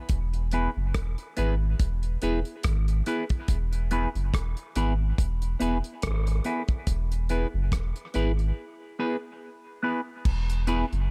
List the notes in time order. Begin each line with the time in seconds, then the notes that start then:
0.09 E1, kick, closed hi-hat
0.34 closed hi-hat
0.52 B3 E4 G#4 B4, closed hi-hat
0.77 F#1
0.94 E1, kick, cross-stick, closed hi-hat
1.18 closed hi-hat
1.37 G#1 B3 E4 G#4 B4, closed hi-hat
1.79 E1, kick, closed hi-hat
2.03 closed hi-hat
2.22 E1 B3 E4 G#4 B4, closed hi-hat
2.45 closed hi-hat
2.63 G#1, kick, cross-stick, closed hi-hat
2.88 closed hi-hat
3.06 B3 E4 G#4 B4, closed hi-hat
3.29 kick, closed hi-hat
3.48 E1, kick, closed hi-hat
3.73 closed hi-hat
3.91 B3 E4 G#4 B4, closed hi-hat
4.15 F#1, closed hi-hat
4.34 E1, kick, cross-stick, closed hi-hat
4.57 closed hi-hat
4.75 G#1 B3 E4 G#4 B4, closed hi-hat
5.18 E1, kick, closed hi-hat
5.42 closed hi-hat
5.60 E1 B3 E4 G#4 B4, closed hi-hat
5.84 closed hi-hat
6.02 G#1, kick, cross-stick, closed hi-hat
6.26 muted clean electric guitar stroke, closed hi-hat
6.44 B3 E4 G#4 B4, closed hi-hat
6.68 kick, closed hi-hat
6.87 E1, kick, closed hi-hat
7.12 closed hi-hat
7.29 B3 E4 G#4 B4, closed hi-hat
7.54 F#1
7.72 E1, kick, cross-stick, closed hi-hat
7.96 closed hi-hat
8.14 G#1 B3 E4 G#4 B4, closed hi-hat
8.39 closed hi-hat
8.99 B3 E4 G#4 B4
9.83 B3 E4 G#4 B4
10.25 E1, kick, crash
10.50 closed hi-hat
10.67 B3 E4 G#4 B4, closed hi-hat
10.93 F#1, closed hi-hat